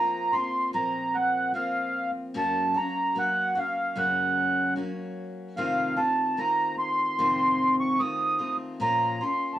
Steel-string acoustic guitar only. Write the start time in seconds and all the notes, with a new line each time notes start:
Already playing: F3 A#3 C4 F4
0.33 A#3 C4 F4
0.73 A#2 F3 A#3 C4
1.54 F3 A#3 C4 F4
2.34 F#2 C#3 F#3 A#3 C#4 F#4
2.74 F#3 A#3 C#4 F#4
3.15 F#3 A#3 C#4 F#4
3.55 F#3 A#3 C#4 F#4
3.96 F#2 C#3 F#3 A#3 C#4 F#4
4.76 F#3 A#3 C#4 F#4
5.57 F2 C3 D#3 A3 C4 F4
5.96 D#3 A3 C4 F4
6.37 D#3 A3 C4 F4
7.19 F2 C3 D#3 A3 C4 F4
7.99 D#3 A3 C4 F4
8.39 D#3 A3 C4 F4
8.80 A#2 F3 A#3 C#4 F4
9.21 A#3 C#4 F4